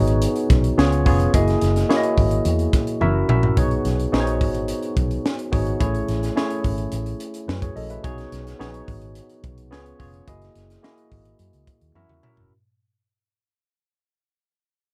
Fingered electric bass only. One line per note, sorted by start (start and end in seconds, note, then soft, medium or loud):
0.00 0.25 G#1 loud
0.50 0.70 B1 loud
0.78 1.08 C#2 medium
1.06 1.26 F1 medium
1.34 1.54 F#1 loud
1.62 1.82 F#1 loud
2.18 2.38 G#1 loud
2.45 2.66 E2 medium
3.01 3.21 F#1 loud
3.29 3.49 A#1 medium
3.57 3.77 B1 loud
3.85 4.05 B1 loud
4.13 4.41 A#1 loud
4.41 4.71 G#1 medium
4.97 5.17 B1 medium
5.53 5.73 G#1 medium
5.81 6.01 A1 loud
6.09 6.29 A1 medium
6.64 6.85 G#1 medium
6.92 7.13 A1 medium
7.48 7.69 F#2 medium
7.76 7.97 A#1 medium
8.04 8.24 B1 loud
8.32 8.52 B1 medium
8.60 8.80 A#1 loud
8.88 9.18 G#1 medium
9.44 9.72 B1 medium
9.72 9.92 C#2 loud
10.00 10.20 F1 medium
10.28 10.48 F#1 loud
10.56 10.76 F#1 medium
11.12 11.32 G#1 medium
11.39 11.50 F#2 loud
11.54 11.64 C#2 medium
11.82 11.92 D#2 medium
11.95 12.05 F#2 medium
12.09 12.19 E2 medium
12.37 12.48 F1 medium